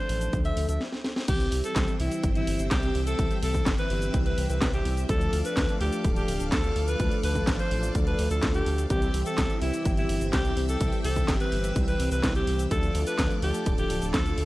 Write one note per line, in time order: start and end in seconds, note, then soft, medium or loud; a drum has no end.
0.00 0.77 A4 medium
0.00 0.37 C5 loud
0.00 0.77 D5 medium
0.00 0.77 F5 medium
0.00 0.77 D6 medium
0.09 0.29 A1 medium
0.09 0.81 F3 medium
0.09 0.81 A3 medium
0.09 0.81 D4 medium
0.09 0.81 A4 medium
0.09 open hi-hat medium
0.21 closed hi-hat soft
0.21 cabasa medium
0.33 0.53 D2 loud
0.33 kick loud
0.33 closed hi-hat medium
0.33 cabasa soft
0.45 0.65 E5 medium
0.45 closed hi-hat soft
0.45 cabasa soft
0.57 0.67 D2 loud
0.57 open hi-hat loud
0.69 0.79 D2 loud
0.69 0.81 E5 medium
0.69 closed hi-hat soft
0.69 cabasa medium
0.81 snare medium
0.92 snare medium
1.04 snare medium
1.16 snare medium
1.28 1.48 C2 loud
1.28 1.97 E3 medium
1.28 1.97 G3 medium
1.28 1.97 C4 medium
1.28 5.06 C4 medium
1.28 1.58 G4 loud
1.28 1.97 G4 medium
1.28 5.06 E5 medium
1.28 5.05 G5 medium
1.28 5.06 E6 medium
1.28 kick loud
1.28 closed hi-hat loud
1.28 crash loud
1.28 cabasa soft
1.40 closed hi-hat soft
1.40 cabasa soft
1.52 1.62 C2 loud
1.52 open hi-hat loud
1.64 1.94 A4 loud
1.64 closed hi-hat soft
1.64 cabasa medium
1.76 1.86 C2 medium
1.76 kick loud
1.76 snare loud
1.76 clap loud
1.76 closed hi-hat loud
1.76 cabasa soft
1.88 closed hi-hat soft
1.88 cabasa soft
2.00 2.10 C2 medium
2.00 3.16 E3 medium
2.00 3.16 G3 medium
2.00 3.16 C4 medium
2.00 2.30 E4 loud
2.00 3.16 G4 medium
2.00 open hi-hat medium
2.12 closed hi-hat soft
2.12 cabasa medium
2.24 2.43 G1 medium
2.24 kick loud
2.24 closed hi-hat medium
2.24 cabasa soft
2.35 2.65 E4 loud
2.35 closed hi-hat soft
2.35 cabasa soft
2.47 2.57 G1 medium
2.47 open hi-hat loud
2.59 2.69 G1 loud
2.59 closed hi-hat soft
2.59 cabasa medium
2.71 2.91 C2 medium
2.71 3.01 G4 loud
2.71 kick loud
2.71 snare loud
2.71 clap loud
2.71 closed hi-hat loud
2.71 cabasa soft
2.83 closed hi-hat soft
2.83 cabasa soft
2.95 3.15 C2 medium
2.95 open hi-hat medium
3.07 3.37 A4 loud
3.07 closed hi-hat soft
3.07 cabasa medium
3.19 3.29 C2 medium
3.19 3.87 E3 medium
3.19 3.87 G3 medium
3.19 3.87 C4 medium
3.19 3.87 G4 medium
3.19 kick loud
3.19 closed hi-hat medium
3.19 cabasa soft
3.31 closed hi-hat soft
3.31 cabasa soft
3.43 3.62 C2 medium
3.43 3.73 A4 loud
3.43 open hi-hat loud
3.54 kick medium
3.54 closed hi-hat soft
3.54 cabasa medium
3.66 3.76 G1 medium
3.66 kick loud
3.66 snare loud
3.66 clap loud
3.66 closed hi-hat loud
3.66 cabasa soft
3.78 4.18 B4 loud
3.78 closed hi-hat soft
3.78 cabasa soft
3.90 4.10 G1 medium
3.90 5.06 E3 medium
3.90 5.06 G3 medium
3.90 5.06 C4 medium
3.90 5.06 G4 medium
3.90 open hi-hat medium
4.02 closed hi-hat soft
4.02 cabasa medium
4.14 4.34 C2 loud
4.14 kick loud
4.14 closed hi-hat medium
4.14 cabasa soft
4.26 4.46 B4 medium
4.26 closed hi-hat soft
4.26 cabasa soft
4.38 4.48 C2 medium
4.38 open hi-hat loud
4.50 4.60 C2 loud
4.50 4.70 B4 medium
4.50 closed hi-hat soft
4.50 cabasa medium
4.62 4.81 C2 loud
4.62 kick loud
4.62 snare loud
4.62 clap loud
4.62 closed hi-hat medium
4.62 cabasa soft
4.74 5.04 G4 loud
4.74 closed hi-hat soft
4.74 cabasa soft
4.85 5.05 C2 medium
4.85 open hi-hat medium
4.97 closed hi-hat soft
4.97 cabasa medium
5.09 5.29 D2 loud
5.09 5.78 F3 medium
5.09 5.78 A3 medium
5.09 5.78 D4 medium
5.09 8.86 A4 medium
5.09 5.78 A4 medium
5.09 5.39 A4 loud
5.09 8.86 D5 medium
5.09 8.86 F5 medium
5.09 8.86 D6 medium
5.09 kick loud
5.09 closed hi-hat medium
5.09 cabasa soft
5.21 closed hi-hat soft
5.21 cabasa soft
5.33 5.43 D2 medium
5.33 open hi-hat loud
5.45 5.75 B4 loud
5.45 closed hi-hat soft
5.45 cabasa medium
5.57 5.67 D2 medium
5.57 kick loud
5.57 snare loud
5.57 clap loud
5.57 closed hi-hat medium
5.57 cabasa soft
5.69 closed hi-hat soft
5.69 cabasa soft
5.81 5.91 D2 medium
5.81 6.97 F3 medium
5.81 6.97 A3 medium
5.81 6.97 D4 medium
5.81 6.11 G4 loud
5.81 6.97 A4 medium
5.81 open hi-hat medium
5.93 closed hi-hat soft
5.93 cabasa medium
6.04 6.24 D1 medium
6.04 kick loud
6.04 closed hi-hat medium
6.04 cabasa soft
6.16 6.46 G4 loud
6.16 closed hi-hat soft
6.16 cabasa soft
6.28 6.38 D1 medium
6.28 open hi-hat loud
6.40 6.50 D1 loud
6.40 closed hi-hat soft
6.40 cabasa medium
6.52 6.72 D2 medium
6.52 6.82 A4 loud
6.52 kick loud
6.52 snare loud
6.52 clap loud
6.52 closed hi-hat medium
6.52 cabasa soft
6.64 closed hi-hat soft
6.64 cabasa soft
6.76 6.96 D2 medium
6.76 open hi-hat medium
6.88 7.18 B4 loud
6.88 closed hi-hat soft
6.88 cabasa medium
7.00 7.10 D2 medium
7.00 7.68 F3 medium
7.00 7.68 A3 medium
7.00 7.68 D4 medium
7.00 7.68 A4 medium
7.00 kick loud
7.00 closed hi-hat medium
7.00 cabasa soft
7.12 closed hi-hat soft
7.12 cabasa soft
7.23 7.43 D2 medium
7.23 7.54 B4 loud
7.23 open hi-hat loud
7.35 kick medium
7.35 closed hi-hat soft
7.35 cabasa medium
7.47 7.57 A1 medium
7.47 kick loud
7.47 snare loud
7.47 clap loud
7.47 closed hi-hat medium
7.47 cabasa medium
7.59 7.95 C5 loud
7.59 closed hi-hat soft
7.59 cabasa soft
7.71 7.91 A1 medium
7.71 8.87 F3 medium
7.71 8.87 A3 medium
7.71 8.87 D4 medium
7.71 8.87 A4 medium
7.71 open hi-hat medium
7.83 closed hi-hat soft
7.83 cabasa medium
7.95 8.15 D2 loud
7.95 kick loud
7.95 closed hi-hat medium
7.95 cabasa soft
8.07 8.27 B4 medium
8.07 closed hi-hat soft
8.07 cabasa soft
8.19 8.29 D2 medium
8.19 open hi-hat loud
8.31 8.41 D2 loud
8.31 8.51 A4 medium
8.31 closed hi-hat soft
8.31 cabasa medium
8.43 8.62 D2 medium
8.43 kick loud
8.43 snare loud
8.43 clap loud
8.43 closed hi-hat medium
8.43 cabasa soft
8.54 8.85 G4 loud
8.54 closed hi-hat soft
8.54 cabasa soft
8.66 8.86 D2 medium
8.66 open hi-hat medium
8.78 closed hi-hat soft
8.78 cabasa medium
8.90 9.10 C2 loud
8.90 9.59 E3 medium
8.90 9.59 G3 medium
8.90 12.67 C4 medium
8.90 9.59 C4 medium
8.90 9.59 G4 medium
8.90 9.20 G4 loud
8.90 12.67 E5 medium
8.90 12.67 G5 medium
8.90 12.67 E6 medium
8.90 kick loud
8.90 closed hi-hat medium
8.90 cabasa medium
9.02 closed hi-hat soft
9.02 cabasa soft
9.14 9.24 C2 loud
9.14 open hi-hat loud
9.26 9.56 A4 loud
9.26 closed hi-hat soft
9.26 cabasa medium
9.38 9.48 C2 medium
9.38 kick loud
9.38 snare loud
9.38 clap loud
9.38 closed hi-hat medium
9.38 cabasa medium
9.50 closed hi-hat soft
9.50 cabasa soft
9.62 9.71 C2 medium
9.62 10.78 E3 medium
9.62 10.78 G3 medium
9.62 10.78 C4 medium
9.62 9.92 E4 loud
9.62 10.78 G4 medium
9.62 open hi-hat medium
9.74 closed hi-hat soft
9.74 cabasa medium
9.85 10.05 G1 medium
9.85 kick loud
9.85 closed hi-hat medium
9.85 cabasa medium
9.97 10.27 E4 loud
9.97 closed hi-hat soft
9.97 cabasa soft
10.09 10.19 G1 medium
10.09 open hi-hat loud
10.21 10.31 G1 loud
10.21 closed hi-hat soft
10.21 cabasa medium
10.33 10.53 C2 medium
10.33 10.63 G4 loud
10.33 kick loud
10.33 snare loud
10.33 clap loud
10.33 closed hi-hat medium
10.33 cabasa soft
10.45 closed hi-hat soft
10.45 cabasa soft
10.57 10.77 C2 medium
10.57 open hi-hat loud
10.69 10.99 A4 loud
10.69 closed hi-hat soft
10.69 cabasa medium
10.81 10.91 C2 medium
10.81 11.49 E3 medium
10.81 11.49 G3 medium
10.81 11.49 C4 medium
10.81 11.49 G4 medium
10.81 kick loud
10.81 closed hi-hat medium
10.81 cabasa medium
10.93 closed hi-hat soft
10.93 cabasa soft
11.04 11.24 C2 medium
11.04 11.35 A4 loud
11.04 open hi-hat loud
11.16 kick medium
11.16 closed hi-hat soft
11.16 cabasa medium
11.28 11.38 G1 medium
11.28 kick loud
11.28 snare loud
11.28 clap loud
11.28 closed hi-hat medium
11.28 cabasa medium
11.40 11.80 B4 loud
11.40 closed hi-hat soft
11.40 cabasa soft
11.52 11.72 G1 medium
11.52 12.68 E3 medium
11.52 12.68 G3 medium
11.52 12.68 C4 medium
11.52 12.68 G4 medium
11.52 open hi-hat medium
11.64 closed hi-hat soft
11.64 cabasa medium
11.76 11.96 C2 loud
11.76 kick loud
11.76 closed hi-hat medium
11.76 cabasa medium
11.88 12.08 B4 medium
11.88 closed hi-hat soft
11.88 cabasa soft
12.00 12.10 C2 medium
12.00 open hi-hat loud
12.12 12.21 C2 loud
12.12 12.32 B4 medium
12.12 closed hi-hat soft
12.12 cabasa medium
12.24 12.43 C2 medium
12.24 kick loud
12.24 snare loud
12.24 clap medium
12.24 closed hi-hat medium
12.24 cabasa medium
12.35 12.66 G4 loud
12.35 closed hi-hat soft
12.35 cabasa soft
12.47 12.67 C2 medium
12.47 open hi-hat loud
12.59 closed hi-hat soft
12.59 cabasa medium
12.71 12.91 D2 loud
12.71 13.40 F3 medium
12.71 13.40 A3 medium
12.71 13.40 D4 medium
12.71 14.45 F4 medium
12.71 14.45 A4 medium
12.71 13.01 A4 loud
12.71 13.40 A4 medium
12.71 14.45 D5 medium
12.71 14.45 D6 medium
12.71 kick loud
12.71 closed hi-hat loud
12.71 cabasa medium
12.83 closed hi-hat soft
12.83 cabasa soft
12.95 13.05 D2 loud
12.95 open hi-hat loud
13.07 13.37 B4 loud
13.07 closed hi-hat soft
13.07 cabasa medium
13.19 13.29 D2 medium
13.19 kick loud
13.19 snare loud
13.19 clap loud
13.19 closed hi-hat loud
13.19 cabasa medium
13.31 closed hi-hat soft
13.31 cabasa soft
13.42 13.52 D2 medium
13.42 14.45 F3 medium
13.42 14.45 A3 medium
13.42 14.45 D4 medium
13.42 13.73 G4 loud
13.42 14.45 A4 medium
13.42 open hi-hat medium
13.54 closed hi-hat soft
13.54 cabasa medium
13.66 13.86 D1 medium
13.66 kick loud
13.66 closed hi-hat medium
13.66 cabasa soft
13.78 14.08 G4 loud
13.78 closed hi-hat soft
13.78 cabasa soft
13.90 14.00 D1 medium
13.90 open hi-hat loud
14.02 14.12 D1 loud
14.02 closed hi-hat soft
14.02 cabasa medium
14.14 14.34 D2 medium
14.14 14.44 A4 loud
14.14 kick loud
14.14 snare loud
14.14 clap loud
14.14 closed hi-hat loud
14.14 cabasa medium
14.26 closed hi-hat soft
14.26 cabasa soft
14.38 14.45 D2 medium
14.38 open hi-hat loud